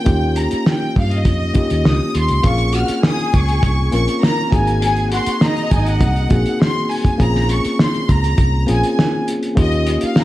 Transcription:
Already playing: G5
0.04 D#2 A#3 C#4 D#4 F4 G4, kick, closed hi-hat
0.36 A#5, closed hi-hat
0.51 muted fingered electric bass stroke, closed hi-hat
0.66 G5, snare
0.96 G2 F5, kick, open hi-hat
1.11 D#5, closed hi-hat
1.25 F2, kick, closed hi-hat
1.53 A#3 C#4 D#4 F4 G4, muted fingered electric bass stroke, kick, closed hi-hat
1.70 D#2, closed hi-hat
1.85 C#2 D#6, snare
2.15 D#2 C6, closed hi-hat
2.29 C#2, closed hi-hat
2.43 A#1 A#3 C4 C#4 F4 G#4 F5 C#6, kick, closed hi-hat
2.58 closed hi-hat
2.73 F#4 F#5 F6, closed hi-hat
2.88 muted fingered electric bass stroke, closed hi-hat
3.03 G#4 G#5 D#6, snare
3.19 closed hi-hat
3.34 C#2 C#6, kick, closed hi-hat
3.48 closed hi-hat
3.63 C2, kick, closed hi-hat
3.92 A#1 A#3 C4 C#4 F4 A#4 C#6, closed hi-hat
4.08 closed hi-hat
4.23 A#4 A#5, snare
4.51 G#1 A#3 C4 D#4 F#4 G#4 G#5, kick, closed hi-hat
4.67 closed hi-hat
4.82 G#4 G#5, closed hi-hat
4.97 closed hi-hat
5.12 F#4 F#5 C6, closed hi-hat
5.26 muted fingered electric bass stroke, closed hi-hat
5.41 D#4 D#5 A#5, snare
5.57 closed hi-hat
5.71 G#1 G#5, kick, closed hi-hat
5.86 F#5, closed hi-hat
6.01 C2, kick, closed hi-hat
6.16 closed hi-hat
6.29 A#1 A#3 C4 D#4 F#4 G#4, kick, closed hi-hat
6.46 closed hi-hat
6.62 C6, snare
6.91 G#5, open hi-hat
7.05 kick, closed hi-hat
7.18 A#1 A#3 C4 C#4 F4 G#4 A#5, kick, closed hi-hat
7.35 snare
7.49 C#6, closed hi-hat
7.65 muted fingered electric bass stroke, closed hi-hat
7.79 C6, snare
7.94 closed hi-hat
8.09 C#2 A#5, kick, closed hi-hat
8.24 closed hi-hat
8.38 C2, kick, closed hi-hat
8.66 A#1 A#3 C4 C#4 F4 G#4, closed hi-hat
8.70 G#5
8.83 closed hi-hat
8.99 snare
9.28 closed hi-hat
9.43 closed hi-hat
9.55 D#2 A#3 C#4 D#4 F4 G4, kick, closed hi-hat
9.60 D#5
9.72 closed hi-hat
9.87 closed hi-hat
10.01 F5, muted fingered electric bass stroke, closed hi-hat
10.16 A#5, snare

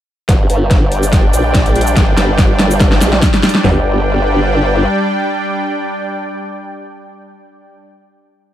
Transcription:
0.29 G1 G3 D4 D5 G5, kick, snare, closed hi-hat
0.50 G1, closed hi-hat
0.71 kick, snare, closed hi-hat
0.92 closed hi-hat
1.03 closed hi-hat, shaker
1.13 kick, snare, closed hi-hat
1.34 A#1, closed hi-hat, shaker
1.55 A#1, kick, snare, closed hi-hat
1.66 closed hi-hat
1.76 closed hi-hat
1.81 closed hi-hat
1.87 shaker
1.97 G1, kick, snare, closed hi-hat
2.17 G1, snare, closed hi-hat
2.38 kick, snare, closed hi-hat
2.59 snare, closed hi-hat
2.71 closed hi-hat, shaker
2.80 kick, snare, closed hi-hat
2.92 snare
3.01 A#1, snare, closed hi-hat, shaker
3.13 snare
3.22 kick, snare, closed hi-hat
3.34 snare, closed hi-hat
3.43 snare, closed hi-hat
3.49 closed hi-hat
3.55 snare
3.64 G1 G3 D4 D5 G5, snare, floor tom

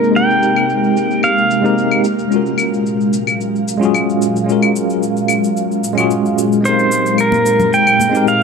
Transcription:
Already playing: C3 G#3 A#3 C4 D#4 G4 A#4
0.04 cabasa
0.11 G#3 C4
0.15 D#4 G4 A#4 G5, cabasa
0.30 cabasa
0.43 cabasa
0.56 cabasa, claves
0.70 cabasa
0.84 cabasa
0.97 cabasa
1.11 cabasa
1.23 F5, cabasa, claves
1.38 cabasa
1.51 cabasa
1.62 G#3 C4 D#4 G4 A#4, cabasa
1.78 cabasa
1.91 cabasa, claves
2.03 A#2 F#3 F5, cabasa
2.19 cabasa
2.28 G#3 C#4, cabasa
2.32 F4 F#4 A#4
2.46 cabasa
2.58 cabasa, claves
2.74 cabasa
2.86 cabasa
3.01 cabasa
3.13 cabasa
3.27 cabasa, claves
3.41 cabasa
3.56 cabasa
3.68 cabasa
3.77 G#3 C#4 F4
3.83 F#4 G#4, cabasa
3.94 cabasa, claves
4.10 cabasa
4.22 cabasa
4.36 cabasa
4.44 G#3 C#4 F4
4.49 F#4 A#4, cabasa
4.63 cabasa, claves
4.76 cabasa
4.90 cabasa
5.03 cabasa
5.17 cabasa
5.28 cabasa, claves
5.44 cabasa
5.57 cabasa
5.72 cabasa
5.84 cabasa
5.93 G#3 C#4
5.97 F4 F#4 G#4, cabasa, claves
6.11 cabasa
6.26 cabasa
6.38 cabasa
6.52 cabasa
6.61 G#3 C4 D#4 G4
6.65 G4 A#4 C5, cabasa
6.79 cabasa
6.92 cabasa
7.06 cabasa
7.18 A#4, cabasa, claves
7.32 high conga, cabasa
7.46 cabasa
7.60 low conga, cabasa
7.73 G5, cabasa
7.87 cabasa, claves
8.00 high conga, cabasa
8.09 G#3 C4 D#4
8.15 G4 A#4, cabasa
8.28 F5, cabasa

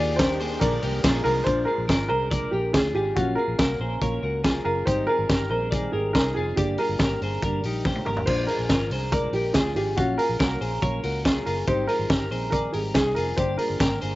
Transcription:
Already playing: D#2 D#3 D4 G4 D5
0.00 A#3 F4 G#4
0.16 G3 A#3 D4 G4 A#4 C5, kick, snare, hi-hat pedal, ride
0.39 A#3 D4 G4 G#4 C5, open hi-hat
0.60 A#1 A#2 D3 F3 G#3 A#3 D4 G#4 A#4 D5, kick, hi-hat pedal, ride
0.81 C2 F3 A#3 D4 G4 G#4 A#4, open hi-hat
1.02 A#1 F3 A#3 D4 F4 G#4, kick, snare, hi-hat pedal, ride
1.24 C2 F3 A#3 D4 F4 G#4 A#4, open hi-hat
1.44 A#1 A#2 F3 G#3 D4 F4 G#4 C5, kick, closed hi-hat
1.65 D4 F4 G#4 A#4
1.69 G#3
1.78 A#1
1.88 G#1 F3 G#3 D4 F4 G#4 A#4, kick, snare, closed hi-hat
2.08 C2 D4 G#4 A#4 C5
2.13 G#3
2.31 A#2 F3 G#3 D4 G#4 A#4 D5, kick, closed hi-hat
2.51 A#1 D4 G4 G#4 A#4
2.56 G#3
2.73 D2 F3 G#3 D4 F4 G#4, kick, snare, closed hi-hat
2.94 G#1 G#3 D4 F4 G4 G#4
3.16 A#1 A#2 F#3 A#3 C#4 F4 F#4, kick, closed hi-hat
3.35 F4 G#4 A#4
3.40 A#3
3.48 A#1
3.58 C2 F#3 A#3 F4 F#4 A#4, kick, snare, closed hi-hat
3.80 A#1 A#3 C#4 F4 G#4 C5
4.01 A#1 A#2 F#3 A#3 C#4 F4 A#4 C#5, kick, closed hi-hat
4.22 C#2 A#3 C#4 F4 F#4 A#4
4.44 F#3 A#3 C#4 F4 G#4, kick, snare, closed hi-hat
4.65 F#1 A#3 C#4 F4 G#4 A#4
4.86 G#1 G#2 D#3 G3 C4 D#4 G4 C5, kick, closed hi-hat
5.07 G3 C4 D#4 F4 G#4 A#4
5.19 G#1
5.29 G1 D#3 G3 C4 D#4 G4 A#4, kick, snare, closed hi-hat
5.50 A#1 C4 D#4 G#4 A#4 C5
5.54 G3
5.71 G#2 D#3 G3 C4 D#4 G#4 D5, kick, closed hi-hat
5.92 G#1 C4 D#4 G4 G#4 A#4
5.96 G3
6.13 C2 G3 D#4 G#4 A#4, kick, snare, closed hi-hat
6.34 F1 C4 D#4 F4 G#4
6.39 G3
6.56 G1 G2 D3 G3 A#3 D4 G4, kick, closed hi-hat
6.78 G3 A#3 D4 F4 G#4 A#4, open hi-hat
6.89 G1
6.99 G#1 D3 G3 A#3 G4 A#4, kick, snare, closed hi-hat
7.21 G1 G3 A#3 D4 G#4 C5, open hi-hat
7.42 G1 G2 D3 G3 A#3 D4 G4 A#4, kick, closed hi-hat
7.63 A#1 G3 A#3 D4 D#4 G4, open hi-hat
7.85 D3 G3 A#3 D4 G4 C5, kick, snare
7.95 high tom
8.05 G#1 G3 A#3 D4 G4 A#4, mid tom
8.17 floor tom
8.26 A#1 A#2 F3 G#3 D4 F4 C5, kick, crash
8.47 G#3 D4 F4 G#4 A#4, open hi-hat
8.51 F3
8.59 A#1
8.69 G#1 A#2 F3 G#3 F4 A#4, kick, snare, closed hi-hat
8.91 C2 F3 G#3 D4 G#4 C5, open hi-hat
9.12 A#2 F3 G#3 D4 A#4 D5, kick, closed hi-hat
9.33 A#1 F3 G#3 D4 G4 A#4, open hi-hat
9.53 D2 A#2 F3 G#3 D4 F4 G#4, kick, snare, closed hi-hat
9.75 G#1 F3 G#3 D4 F4 G4 G#4, open hi-hat
9.96 A#1 A#2 F#3 A#3 C#4 F4 F#4, kick, closed hi-hat
10.17 A#3 C#4 F4 G#4 A#4, open hi-hat
10.29 A#1
10.38 C2 F#3 A#3 C#4 F4 F#4 A#4, kick, snare, closed hi-hat
10.60 A#1 A#3 C#4 F4 G#4 C5, open hi-hat
10.81 A#1 A#2 F#3 A#3 C#4 F4 A#4 C#5, kick, closed hi-hat
11.03 C#2 A#3 C#4 F4 F#4 A#4, open hi-hat
11.25 F#3 A#3 C#4 F4 G#4, kick, snare, closed hi-hat
11.46 F#1 A#3 C#4 F4 G#4 A#4, open hi-hat
11.67 G#1 G#2 D#3 G3 C4 D#4 G4 C5, kick, closed hi-hat
11.87 G3 C4 F4 G#4 A#4, open hi-hat
11.99 G#1
12.10 G1 D#3 G3 C4 D#4 G4 A#4, kick, snare, closed hi-hat
12.31 A#1 G3 C4 D#4 G#4 C5, open hi-hat
12.50 G#2 D#3 G3 C4 G#4 A#4 D5, kick, closed hi-hat
12.54 D#4
12.72 G#1 G3 C4 D#4 G4 G#4 A#4, open hi-hat
12.94 C2 G3 C4 D#4 G#4, kick, snare, closed hi-hat
13.15 F1 C4 D#4 F4 G#4 A#4, open hi-hat
13.19 G3
13.36 G1 G2 D3 G3 A#3 D4 G4 C5, kick, closed hi-hat
13.58 G3 A#3 D4 F4 G#4 A#4, open hi-hat
13.70 G1
13.80 G#1 D3 G3 A#3 D4 G4 A#4, kick, snare, closed hi-hat
14.01 G1 G3 A#3 D4 G#4 C5, open hi-hat

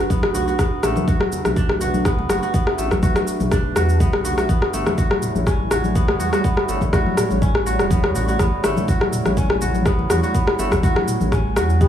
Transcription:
Already playing: A3 D4 F#4 B4
0.10 B3, kick, high conga, shaker
0.23 F#1, cross-stick, muted conga, high conga
0.34 B1 F#4, low conga, shaker
0.48 F#4, shaker
0.59 B1 B3, kick, cross-stick, muted conga, shaker
0.83 A1 A3, cross-stick, shaker
0.96 muted conga, high conga, low conga, shaker
1.08 F#4, kick, shaker
1.20 cross-stick, high conga
1.32 low conga, shaker
1.45 B1, cross-stick, muted conga, high conga, shaker
1.56 D4, kick, shaker
1.69 cross-stick, high conga
1.81 B1 F#4, muted conga, low conga, shaker
1.94 high conga, shaker
2.05 B3, kick, cross-stick, shaker
2.19 muted conga, low conga
2.29 F#1 F#4, cross-stick, high conga, shaker
2.42 F#4, shaker
2.54 B3, kick, muted conga, shaker
2.67 cross-stick
2.78 A1 A3, shaker
2.91 kick, cross-stick, muted conga, high conga, low conga, shaker
3.03 F#4, kick, shaker
3.15 cross-stick, high conga, shaker
3.27 shaker
3.40 B1, muted conga, high conga, shaker
3.51 D4, kick, cross-stick, shaker
3.75 E2 F#4, cross-stick, muted conga, high conga, shaker
3.89 shaker
4.00 B1 B3, kick, high conga, shaker
4.13 cross-stick, muted conga, high conga
4.25 F#4, low conga, shaker
4.38 F#4, cross-stick, shaker
4.49 A1 G3 B3 E4 C#5, kick, muted conga, shaker
4.62 cross-stick
4.73 G1 A3, shaker
4.86 cross-stick, muted conga, high conga, low conga, shaker
4.98 F#4, kick, shaker
5.11 cross-stick, high conga
5.22 mid tom, low conga, shaker
5.35 A1, muted conga, high conga, shaker
5.47 C#4, kick, cross-stick, shaker
5.60 high conga
5.71 A1 F#4, cross-stick, muted conga, low conga, shaker
5.84 high conga, shaker
5.95 B3, kick, shaker
6.08 cross-stick, muted conga, low conga
6.20 E2 F#4, high conga, shaker
6.33 F#4, cross-stick, shaker
6.44 B3, kick, muted conga, shaker
6.57 cross-stick
6.69 G1 A3, shaker
6.81 kick, muted conga, high conga, low conga, shaker
6.93 F#4, kick, cross-stick, shaker
7.06 high conga
7.17 cross-stick, mid tom, shaker
7.30 A1, muted conga, high conga, shaker
7.42 C#4, kick, mid tom, shaker
7.55 cross-stick
7.66 A1 F#4, muted conga, shaker
7.79 E1, cross-stick, shaker
7.91 B3, kick, high conga, shaker
8.03 E2, cross-stick, muted conga, high conga
8.15 A1 F#4, mid tom, low conga, shaker
8.28 F#4, shaker
8.39 A1 B3, kick, cross-stick, muted conga, shaker
8.64 G1 A3, cross-stick, shaker
8.76 muted conga, high conga, low conga, shaker
8.88 F#4, kick, shaker
9.01 cross-stick, high conga
9.12 mid tom, low conga, shaker
9.25 A1, cross-stick, muted conga, high conga, shaker
9.37 C#4, kick, shaker
9.50 cross-stick, high conga
9.61 A1 F#4, muted conga, low conga, shaker
9.75 high conga, shaker
9.86 B3, kick, cross-stick, shaker
9.99 muted conga, low conga
10.10 E2 F#4, cross-stick, high conga, shaker
10.23 F#4, shaker
10.34 B3, kick, muted conga, shaker
10.47 cross-stick
10.59 G1 A3, shaker
10.71 kick, cross-stick, muted conga, high conga, low conga, shaker
10.83 F#4, kick, shaker
10.96 cross-stick, high conga
11.08 mid tom, shaker
11.20 A1, muted conga, high conga, shaker
11.32 C#4, kick, cross-stick, mid tom, shaker
11.56 E2 F#4, cross-stick, muted conga, shaker
11.70 shaker
11.81 B3 G4, kick, high conga, shaker

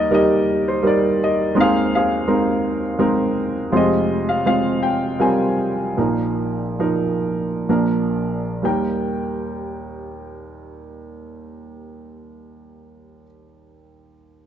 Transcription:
Already playing: D#2 D#3 G3 A#3 D#4 G4 A#4 D5 D#5
0.10 G3 A#3 D#4 A#4 D#5
0.15 G4 A#4
0.68 C5
0.82 G3 A#3 D#4 A#4
0.87 D5
1.24 D#5
1.55 D#2 D#3 G#3 C4 D#4 A#4
1.60 G#4 C5 F5
1.95 G#4 C5 F5
2.27 G#3 C4 D#4 A#4
2.99 G#3 C4 D#4 A#4
3.72 F1 F2 G#3 C4 F4 G4 G#4 C5
3.77 D#5
4.29 F5
4.46 G#3 C4 F4 C5 F5
4.83 G5
5.20 G3 C4 F4 A#4 C5 G#5
5.97 A#1 A#2 F3 A#3 D#4 A#4
6.79 F3 A#3 D#4 A#4
7.69 A#1 A#2 F3 A#3 D4 A#4
8.62 D#2 G3 A#3 D#4 A#4 G5

